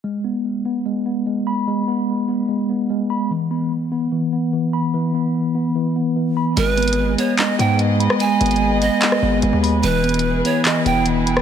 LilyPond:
<<
  \new Staff \with { instrumentName = "Pan flute" } { \time 4/4 \key gis \minor \tempo 4 = 147 r1 | r1 | r1 | r1 |
b'4. cis''8 dis''8 g''8 r4 | gis''4. dis''4. r4 | b'4. cis''8 dis''8 g''8 r4 | }
  \new Staff \with { instrumentName = "String section" } { \time 4/4 \key gis \minor r1 | r1 | r1 | r1 |
<gis gis' b' dis''>1~ | <gis gis' b' dis''>1 | <e e' gis'>1 | }
  \new Staff \with { instrumentName = "Tine electric piano" } { \time 4/4 \key gis \minor gis8 b4 b8 gis8 b8 gis8 b''8 | gis8 b4 b8 gis8 b8 gis8 b''8 | e8 b4 b8 e8 b8 e8 b''8 | e8 b4 b8 e8 b8 e8 b''8 |
gis8 b4 b8 gis8 b8 gis8 b''8 | gis8 b4 b8 gis8 b8 gis8 b''8 | e8 b4 b8 e8 b8 e8 b''8 | }
  \new Staff \with { instrumentName = "808-style bass" } { \clef bass \time 4/4 \key gis \minor r1 | r1 | r1 | r1 |
gis,,4. r4 gis,4~ gis,16 r16 | r8 gis,,4~ gis,,16 r8. gis,,8 gis,,16 dis,8. | e,,4. r4 e,,4. | }
  \new DrumStaff \with { instrumentName = "Drums" } \drummode { \time 4/4 r4 r4 r4 r4 | r4 r4 r4 r4 | r4 r4 r4 r4 | r4 r4 r4 r4 |
hh8 hh32 hh32 hh32 hh32 r8 hh8 <hc hh>8 hh8 hh8 hh16 ss16 | hh8 hh32 hh32 hh32 hh32 r8 hh8 <hc hh>16 ss8. hh8 hho8 | hh8 hh32 hh32 hh32 hh32 r8 hh8 <hc hh>8 hh8 hh8 hh16 ss16 | }
>>